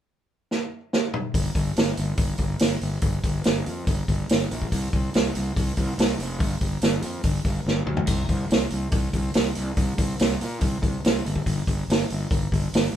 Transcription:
0.51 snare
0.93 snare
1.14 mid tom
1.34 G1, kick, open hi-hat
1.55 G1, kick, open hi-hat
1.76 G1, snare, open hi-hat
1.97 G1, open hi-hat
2.17 G1, kick, open hi-hat
2.38 G1, kick, open hi-hat
2.59 G1, snare, open hi-hat
2.81 G1, open hi-hat
3.02 G1, kick, open hi-hat
3.24 G1, kick, open hi-hat
3.44 G1, snare, open hi-hat
3.66 F2, open hi-hat
3.87 G1, kick, open hi-hat
4.08 G1, kick, open hi-hat
4.29 G1, snare, open hi-hat
4.51 A#1, open hi-hat
4.62 kick
4.72 C2, kick, open hi-hat
4.93 C2, kick, open hi-hat
5.14 C2, snare, open hi-hat
5.35 C2, open hi-hat
5.56 C2, kick, open hi-hat
5.77 C2, kick, open hi-hat
5.98 C2, snare, open hi-hat
6.19 F1, open hi-hat
6.40 G1, kick, open hi-hat
6.61 G1, kick, open hi-hat
6.82 G1, snare, open hi-hat
7.02 F2, open hi-hat
7.23 G1, kick, open hi-hat
7.45 G1, kick, open hi-hat
7.65 G1, snare
7.86 D2, mid tom
7.97 floor tom
8.07 C2, kick, open hi-hat, splash
8.28 C2, kick, open hi-hat
8.50 C2, snare, open hi-hat
8.70 C2, open hi-hat
8.92 C2, kick, open hi-hat
9.13 C2, kick, open hi-hat
9.34 C2, snare, open hi-hat
9.55 C2, open hi-hat
9.77 C2, kick, open hi-hat
9.98 C2, kick, open hi-hat
10.19 C2, snare, open hi-hat
10.41 A#2, open hi-hat
10.61 C2, kick, open hi-hat
10.82 C2, kick, open hi-hat
11.04 C2, snare, open hi-hat
11.26 G1, open hi-hat
11.36 kick
11.46 G1, kick, open hi-hat
11.67 G1, kick, open hi-hat
11.88 G1, snare, open hi-hat
12.10 G1, open hi-hat
12.31 G1, kick, open hi-hat
12.52 G1, kick, open hi-hat
12.73 G1, snare, open hi-hat
12.93 G1

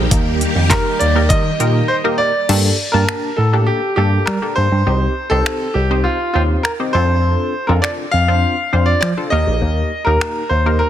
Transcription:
Already playing: D#3 G3 A#3 D#4 G4 A#4
0.11 D#2, kick, closed hi-hat
0.41 closed hi-hat
0.56 F2
0.70 A#3 D#4 G4 A#4, kick, snare, clap, closed hi-hat
0.99 D#2 D5, closed hi-hat
1.15 A#3 D#4 G4 A#4
1.29 D#3 D#5, kick, closed hi-hat
1.60 A#2 A#3 D#4 G4 A#4, closed hi-hat
1.88 C5
2.04 A#3 D#4 G4 A#4
2.18 D5
2.49 G2 A#3 D4 G4 A4, crash
2.92 G2 A#3 D4 G4 A#4 A5
3.09 finger snap
3.37 A2 A4
3.53 A#3 D4 G4 A4
3.67 G4
3.96 G2 A#3 D4 G4 A4
4.26 G3 A#4, finger snap
4.42 A#3 D4 G4 A4
4.56 G2 C5
4.72 G2
4.86 C2 C4 D#4 G4 C5
5.30 C2 C4 D#4 G4 A4 C5
5.46 finger snap
5.74 C2 G4
5.90 C4 D#4 G4 C5
6.04 F4
6.34 D#2 C4 D#4 F4 G4 C5
6.63 A#4, finger snap
6.80 C4 D#4 G4 C5
6.93 F2 C4 D4 F4 A4 C5
7.67 F2 C4 D4 F4 A4 A#4
7.82 D5, finger snap
8.11 F2 F5
8.28 C4 D4 F4 C5
8.73 F2 C4 D4 F4 C5
8.86 D5
9.01 F3 D5, finger snap
9.17 C4 D4 F4 A4
9.30 D#2 A#3 D#4 G4 A#4 D#5
9.47 A#1
9.62 D#2
10.05 D#2 A#3 D#4 G4 A#4
10.21 finger snap
10.49 D#2 C5
10.66 A#3 D#4 G4 A#4
10.79 A#4

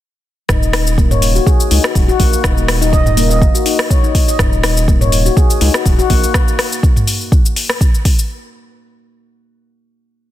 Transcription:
0.49 D#1 D#4, kick, cross-stick, mid tom, shaker
0.63 shaker
0.73 D#4, cross-stick, open hi-hat, shaker
0.87 shaker
0.98 A#3, kick, shaker
1.11 C#5, mid tom, shaker
1.22 open hi-hat, shaker
1.35 F#4, shaker
1.47 G#4, kick, shaker
1.60 shaker
1.71 C#2 D#4, open hi-hat, shaker
1.84 F#4, cross-stick, shaker
1.95 D#1, kick, open hi-hat, shaker
2.08 F#4, shaker
2.20 A#1 A#3, kick, open hi-hat, shaker
2.33 shaker
2.44 D#1 D#4, kick, cross-stick, shaker
2.57 A#3, shaker
2.68 cross-stick, open hi-hat, shaker
2.82 D#4, shaker
2.93 D#5, kick, shaker
3.06 mid tom, shaker
3.17 A#3, open hi-hat, shaker
3.30 D#5, shaker
3.41 F#1, kick, shaker
3.55 F#4, shaker
3.66 D#4, open hi-hat, shaker
3.79 cross-stick, shaker
3.90 C#5, kick, shaker
4.04 D#4, shaker
4.15 kick, open hi-hat, shaker
4.28 D#5, shaker
4.39 D#1, kick, cross-stick, mid tom, shaker
4.53 shaker
4.63 D#4, cross-stick, open hi-hat, shaker
4.77 shaker
4.88 A#3, kick, shaker
5.01 C#5, mid tom, shaker
5.12 open hi-hat, shaker
5.26 F#4, shaker
5.37 G#4, kick, shaker
5.50 shaker
5.61 C#2 D#4, open hi-hat, shaker
5.74 cross-stick, shaker
5.86 D#1, kick, open hi-hat, shaker
5.99 F#4, shaker
6.10 A#1 A#3, kick, open hi-hat, shaker
6.24 shaker
6.34 kick, cross-stick, shaker
6.48 shaker
6.59 cross-stick, open hi-hat, shaker
6.72 shaker
6.83 kick, shaker
6.96 mid tom, shaker
7.07 open hi-hat, shaker
7.21 shaker
7.32 kick, shaker
7.46 shaker
7.56 open hi-hat, shaker
7.69 cross-stick, shaker
7.81 kick, shaker
7.94 shaker
8.05 kick, open hi-hat, shaker
8.19 shaker

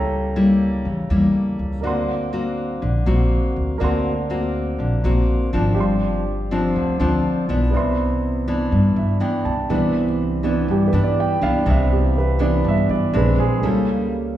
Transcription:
Already playing: C#2 C#3 G3 A#3 E4 A4 C#5 G5 A#5
0.36 G3 A#3 E4
0.85 E2 C#3
1.10 E2 G3 A#3 E4
1.59 C#2
1.81 D2 D3 A#3 C4 F#4 A#4 D5
1.85 F#5 C6
2.33 A#3 C4 F#4
2.82 A#1 D3
3.06 A#1 A#3 C4 F#4
3.56 D2
3.78 D2 D3 A#3 C4 F#4 A#4 D5
3.82 F#5 C6
4.30 A#3 C4 F#4
4.79 A#1 D3
5.04 A#1 A#3 C4 F#4
5.53 G#1 F3 C4 D4
5.74 G1 G2 G4 D5 F5
5.80 C6
6.51 F3 C4 D4
6.76 D2 D3
7.00 D2 F3 C4 D4
7.49 B1 E3 B3 D4
7.71 C2 C3 B3 D5
7.75 E5 C6
8.48 E3 B3 D4
8.71 G2
8.96 G2 E5
9.20 E3 B3 D4 G5
9.45 C2 A5
9.69 C2 C3 E3 B3 D4
10.43 E3 B3 D4
10.68 G2 G4
10.88 B4
10.93 G2 E3 B3 D4
11.04 D5
11.20 G5
11.42 C2 E3 B3 D4 F5
11.66 C2 C3 E3 B3 D4 E5
11.92 G4
12.18 B4
12.39 E3 B3 D4 D5
12.64 G2
12.68 E5
12.89 G2 D5
13.13 A#1 G#3 C4 D4 B4
13.38 A#1 G#4
13.62 C#2 C#3 G3 A#3 C#4 E4 A4

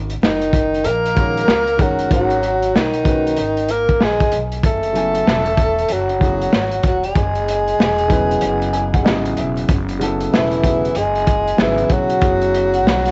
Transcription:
Already playing: G#1
0.10 closed hi-hat
0.22 F#1 D#3 D#4, snare
0.41 closed hi-hat
0.53 kick, closed hi-hat
0.74 closed hi-hat
0.84 A#1 A#3 A#4, closed hi-hat
1.05 closed hi-hat
1.15 D#3 G#3 C#4 F#4 C#5, kick, closed hi-hat
1.37 closed hi-hat
1.48 C#2, snare
1.67 closed hi-hat
1.77 F#1 D#3 G#3 C#4 F#4 A#4, kick, closed hi-hat
1.82 F#3 F#4
1.99 closed hi-hat
2.08 G#1 D#3 G#3 C#4 F#4 A#4, kick, closed hi-hat
2.13 F#3 F#4
2.30 closed hi-hat
2.43 closed hi-hat
2.62 closed hi-hat
2.75 B1 D#3 D#4, snare
2.93 closed hi-hat
3.04 D#3 G#3 C#4 F#4 B4, kick, closed hi-hat
3.27 closed hi-hat
3.37 G#1, closed hi-hat
3.57 closed hi-hat
3.69 A#3 A#4, closed hi-hat
3.89 kick, closed hi-hat
4.01 A#1 G#3 G#4, snare
4.20 kick, closed hi-hat
4.32 B1, closed hi-hat
4.52 closed hi-hat
4.63 F#1 A3 A4, kick, closed hi-hat
4.83 closed hi-hat
4.93 C#3 F#3 B3 E4 G#5, closed hi-hat
5.15 closed hi-hat
5.27 E1, snare
5.46 closed hi-hat
5.57 kick, closed hi-hat
5.78 closed hi-hat
5.88 F#1 F#3, closed hi-hat
5.92 F#4
6.09 closed hi-hat
6.19 C#3 F#3 B3 E4 G#4, kick, closed hi-hat
6.42 closed hi-hat
6.53 G#1, snare
6.72 closed hi-hat
6.83 E1 F#4, kick, closed hi-hat
6.88 F#3
7.03 G#3 G#4, closed hi-hat
7.15 F#1, kick, closed hi-hat
7.35 closed hi-hat
7.48 closed hi-hat
7.67 closed hi-hat
7.79 E1, snare
7.98 closed hi-hat
8.08 C#3 F#3 B3 E4 B4, kick, closed hi-hat
8.31 closed hi-hat
8.41 F#1, closed hi-hat
8.62 closed hi-hat
8.73 G#5, closed hi-hat
8.93 F#5, kick, closed hi-hat
9.03 G#1 C#3 F#3 B3 E4 G4 D#5, snare
9.13 G#4
9.25 closed hi-hat
9.37 E1 E5, closed hi-hat
9.57 closed hi-hat
9.68 F#1, kick, closed hi-hat
9.89 closed hi-hat
9.99 C#3 F#3 B3 E4 A4, closed hi-hat
10.20 closed hi-hat
10.33 E1 E3 E4, snare
10.51 closed hi-hat
10.61 C#3 F#3 B3 E4, kick, closed hi-hat
10.65 G#4
10.85 closed hi-hat
10.95 F#1 G#3 G#4, closed hi-hat
11.15 closed hi-hat
11.27 kick, closed hi-hat
11.47 closed hi-hat
11.57 G#1 C#3 E3 F#3 B3 E4 G#4, snare
11.61 E4
11.78 closed hi-hat
11.90 E1 F#3 F#4, kick, closed hi-hat
12.10 closed hi-hat
12.20 F#1 C#3 F#3 B3 E4 G#4, kick, closed hi-hat
12.41 closed hi-hat
12.54 closed hi-hat
12.74 closed hi-hat
12.85 B1, snare
13.06 snare, closed hi-hat

